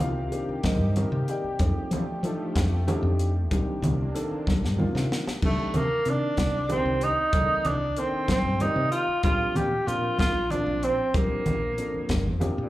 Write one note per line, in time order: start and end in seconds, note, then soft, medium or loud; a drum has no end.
0.00 0.24 C2 medium
0.00 1.55 C3 medium
0.00 0.10 D#3 medium
0.00 0.11 A#3 medium
0.00 1.55 A#3 medium
0.00 0.10 C4 medium
0.00 1.55 C4 medium
0.00 0.11 D#4 medium
0.00 0.60 F4 medium
0.00 5.37 G4 medium
0.00 0.60 F5 loud
0.00 closed hi-hat medium
0.00 low conga medium
0.31 0.74 D#3 medium
0.31 0.74 A#3 medium
0.31 0.74 C4 medium
0.31 0.74 D4 medium
0.31 0.74 G4 medium
0.31 closed hi-hat medium
0.49 muted fretless electric bass stroke soft
0.63 0.80 A#1 medium
0.63 0.95 D#4 medium
0.63 0.96 A#4 medium
0.63 1.23 C5 medium
0.63 1.24 D#5 medium
0.63 kick medium
0.63 snare loud
0.63 closed hi-hat medium
0.63 high conga medium
0.80 1.04 G2 medium
0.96 1.38 D#3 medium
0.96 1.38 A#3 medium
0.96 1.39 C4 medium
0.96 1.38 D#4 medium
0.96 1.39 A#4 medium
0.96 closed hi-hat medium
0.96 low conga medium
1.12 1.24 C3 medium
1.28 1.59 G4 medium
1.28 2.20 D5 medium
1.28 2.20 D#5 medium
1.28 2.20 G5 medium
1.28 closed hi-hat medium
1.44 muted fretless electric bass stroke soft
1.59 1.72 F2 medium
1.59 2.02 F3 medium
1.59 3.49 F3 medium
1.59 2.02 A3 medium
1.59 3.49 A3 medium
1.59 2.02 C4 medium
1.59 2.02 D#4 medium
1.59 2.02 G4 medium
1.59 kick medium
1.59 closed hi-hat medium
1.59 high conga medium
1.91 2.03 F3 medium
1.91 closed hi-hat medium
1.91 low conga medium
2.23 2.35 F3 medium
2.23 2.66 F3 medium
2.23 2.65 A3 medium
2.23 2.66 D4 medium
2.23 2.66 D#4 medium
2.23 2.66 A4 loud
2.23 closed hi-hat medium
2.56 2.91 F2 medium
2.56 kick medium
2.56 snare loud
2.56 closed hi-hat medium
2.56 high conga medium
2.87 3.29 F3 medium
2.87 3.29 A3 medium
2.87 3.29 D4 medium
2.87 3.29 D#4 medium
2.87 3.29 G4 loud
2.87 closed hi-hat medium
2.87 low conga loud
3.03 3.51 F2 medium
3.19 closed hi-hat medium
3.51 3.63 C2 medium
3.51 5.40 C3 medium
3.51 3.93 D#3 medium
3.51 3.93 A#3 medium
3.51 5.40 A#3 medium
3.51 3.93 C4 medium
3.51 5.40 D4 medium
3.51 3.93 D4 medium
3.51 3.93 G4 loud
3.51 kick medium
3.51 closed hi-hat medium
3.51 high conga medium
3.82 4.06 C2 medium
3.82 closed hi-hat medium
3.82 low conga loud
4.15 4.56 D#3 medium
4.15 4.57 A#3 medium
4.15 4.57 C4 medium
4.15 4.57 D4 medium
4.15 4.56 A4 loud
4.15 closed hi-hat medium
4.31 muted fretless electric bass stroke soft
4.47 4.65 A#1 medium
4.47 kick medium
4.47 snare medium
4.47 high conga loud
4.47 low conga soft
4.63 4.87 G2 medium
4.63 snare medium
4.78 5.20 D#3 medium
4.78 5.20 A#3 medium
4.78 5.20 C4 medium
4.78 5.20 D4 medium
4.78 5.20 F4 loud
4.78 low conga medium
4.95 5.06 C3 medium
4.95 snare medium
5.12 snare medium
5.27 muted fretless electric bass stroke soft
5.27 snare medium
5.42 5.54 C2 medium
5.42 5.84 A#2 medium
5.42 5.84 D#3 medium
5.42 5.78 A3 medium
5.42 5.84 C4 medium
5.42 5.84 D4 medium
5.42 5.84 G4 medium
5.42 kick medium
5.42 crash medium
5.42 high conga medium
5.74 5.86 C3 medium
5.74 6.11 A#3 medium
5.74 closed hi-hat medium
5.74 low conga medium
6.05 6.18 C3 medium
6.05 6.47 D#3 medium
6.05 6.47 A#3 medium
6.05 6.48 C4 medium
6.05 6.48 D4 medium
6.05 6.48 A#4 medium
6.05 closed hi-hat medium
6.10 6.71 D4 medium
6.37 6.73 C2 medium
6.37 kick medium
6.37 snare loud
6.37 closed hi-hat medium
6.37 high conga medium
6.69 7.11 D#3 medium
6.69 7.11 A#3 medium
6.69 7.11 C4 medium
6.69 7.05 C4 medium
6.69 7.11 D4 medium
6.69 7.11 G4 medium
6.69 closed hi-hat medium
6.69 low conga medium
6.85 7.09 C2 medium
7.01 7.68 D#4 medium
7.01 closed hi-hat medium
7.33 7.45 C2 medium
7.33 7.75 D#3 medium
7.33 7.75 A#3 medium
7.33 7.75 C4 medium
7.33 7.75 A4 medium
7.33 7.75 D5 medium
7.33 kick loud
7.33 closed hi-hat medium
7.33 high conga medium
7.65 7.89 C2 medium
7.65 8.00 D4 medium
7.65 closed hi-hat medium
7.65 low conga medium
7.96 8.38 D#3 medium
7.96 8.38 A#3 medium
7.96 8.38 C4 medium
7.96 8.29 C4 medium
7.96 8.39 D4 medium
7.96 8.38 A4 medium
7.96 closed hi-hat medium
8.12 muted fretless electric bass stroke soft
8.28 8.45 A#1 medium
8.28 8.63 C4 medium
8.28 kick medium
8.28 snare medium
8.28 closed hi-hat medium
8.28 high conga medium
8.44 8.68 G2 medium
8.60 9.02 D#3 medium
8.60 9.02 A#3 medium
8.60 9.02 C4 medium
8.60 8.91 D#4 medium
8.60 9.02 G4 medium
8.60 9.03 D5 medium
8.60 closed hi-hat soft
8.60 low conga medium
8.76 8.88 C3 medium
8.91 9.21 F4 medium
8.91 closed hi-hat medium
9.08 muted fretless electric bass stroke soft
9.23 9.35 A#1 medium
9.23 9.65 F3 medium
9.23 9.65 A#3 medium
9.23 9.65 C4 medium
9.23 9.66 D4 medium
9.23 9.58 F4 loud
9.23 9.65 G4 medium
9.23 kick loud
9.23 closed hi-hat medium
9.23 high conga medium
9.55 9.67 A#2 medium
9.55 9.89 G4 medium
9.55 closed hi-hat medium
9.55 low conga medium
9.87 9.99 A#2 medium
9.87 10.29 F3 medium
9.87 10.29 A#3 medium
9.87 10.29 C4 medium
9.87 10.29 D4 medium
9.87 10.19 F4 medium
9.87 10.29 A#4 medium
9.87 closed hi-hat medium
10.19 10.55 A#1 medium
10.19 10.53 F4 loud
10.19 kick medium
10.19 snare loud
10.19 closed hi-hat medium
10.19 high conga medium
10.50 10.93 F3 medium
10.50 10.92 A#3 medium
10.50 10.93 C4 medium
10.50 10.86 D4 medium
10.50 10.93 D4 medium
10.50 10.93 F4 medium
10.50 closed hi-hat medium
10.50 low conga medium
10.66 10.90 A#1 medium
10.83 11.18 C4 medium
10.83 closed hi-hat medium
11.14 11.26 A#1 medium
11.14 11.56 F3 medium
11.14 11.56 A#3 medium
11.14 12.42 A#3 medium
11.14 11.56 C4 medium
11.14 11.56 D4 medium
11.14 11.56 G4 medium
11.14 kick loud
11.14 closed hi-hat medium
11.14 high conga medium
11.14 low conga soft
11.46 11.69 A#1 medium
11.46 closed hi-hat medium
11.46 low conga medium
11.77 12.19 F3 medium
11.77 12.19 A#3 medium
11.77 12.19 C4 medium
11.77 12.19 D4 medium
11.77 12.19 A4 medium
11.77 closed hi-hat medium
11.94 muted fretless electric bass stroke soft
11.94 low conga soft
12.09 12.28 G1 medium
12.09 kick medium
12.09 snare medium
12.09 closed hi-hat medium
12.09 high conga medium
12.26 12.50 F2 medium
12.26 low conga soft
12.39 12.69 F3 medium
12.39 12.69 A#3 medium
12.39 12.69 C4 medium
12.39 12.69 D4 medium
12.39 12.69 G4 medium
12.39 12.69 F5 medium
12.39 closed hi-hat medium
12.39 low conga medium
12.58 12.69 A#2 medium
12.58 low conga soft